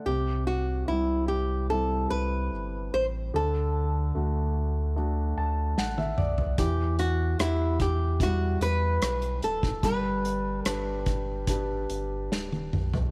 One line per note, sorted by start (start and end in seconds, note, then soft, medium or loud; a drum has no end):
0.06 0.84 C2 medium
0.06 3.30 C3 medium
0.06 0.47 G4 medium
0.47 0.88 F#4 medium
0.88 2.07 C2 medium
0.88 1.68 G3 soft
0.88 1.69 C4 soft
0.88 1.28 E4 medium
0.88 1.68 E4 soft
1.28 1.67 G4 medium
1.70 2.50 G3 soft
1.70 2.50 C4 soft
1.70 2.50 E4 soft
1.70 2.10 A4 medium
2.10 2.49 C2 medium
2.10 2.93 B4 medium
2.52 2.90 G1 medium
2.93 3.31 A1 medium
2.93 3.05 C5 medium
3.34 4.11 D2 medium
3.34 6.55 D3 medium
3.34 4.53 A4 medium
4.15 5.33 D2 medium
4.15 4.94 A3 soft
4.15 4.94 D4 soft
4.15 4.94 F#4 soft
4.96 5.75 A3 soft
4.96 5.75 D4 soft
4.96 5.75 F#4 soft
5.37 5.74 D2 medium
5.37 5.75 A5 medium
5.78 6.15 A1 medium
5.78 5.97 F#5 medium
5.78 snare soft
5.98 6.16 E5 medium
5.98 high tom medium
6.18 6.60 B1 medium
6.18 6.55 D5 medium
6.18 mid tom medium
6.38 floor tom medium
6.58 7.35 E2 medium
6.58 9.80 E3 medium
6.58 6.99 G4 medium
6.58 kick loud
6.58 closed hi-hat medium
6.99 7.40 F#4 medium
6.99 closed hi-hat medium
7.39 8.57 E2 medium
7.39 8.18 E4 soft
7.39 7.81 E4 medium
7.39 8.18 G4 medium
7.39 8.18 F#5 soft
7.39 cross-stick medium
7.39 closed hi-hat medium
7.80 8.22 G4 medium
7.80 kick medium
7.80 closed hi-hat medium
8.20 9.00 G3 soft
8.20 9.00 E4 soft
8.20 9.00 F#4 soft
8.20 8.62 F#4 medium
8.20 kick medium
8.20 closed hi-hat medium
8.60 8.98 E2 loud
8.60 9.44 B4 loud
8.60 closed hi-hat medium
9.02 9.40 B1 medium
9.02 cross-stick medium
9.02 closed hi-hat medium
9.22 closed hi-hat soft
9.42 9.80 D1 medium
9.42 9.81 A4 medium
9.42 closed hi-hat medium
9.63 kick medium
9.83 10.61 G1 loud
9.83 13.11 G3 medium
9.83 10.66 B4 medium
9.83 kick medium
9.83 closed hi-hat medium
10.25 closed hi-hat medium
10.65 11.86 G1 loud
10.65 11.46 D4 soft
10.65 11.46 G4 soft
10.65 11.04 A4 medium
10.65 11.46 B4 medium
10.65 cross-stick medium
10.65 closed hi-hat medium
11.06 kick medium
11.06 closed hi-hat medium
11.47 12.30 D4 soft
11.47 12.30 G4 soft
11.47 12.30 B4 medium
11.47 kick medium
11.47 closed hi-hat medium
11.90 12.29 G1 medium
11.90 closed hi-hat medium
12.32 12.75 D1 medium
12.32 snare medium
12.52 high tom medium
12.73 13.11 B1 medium
12.73 mid tom medium
12.94 floor tom medium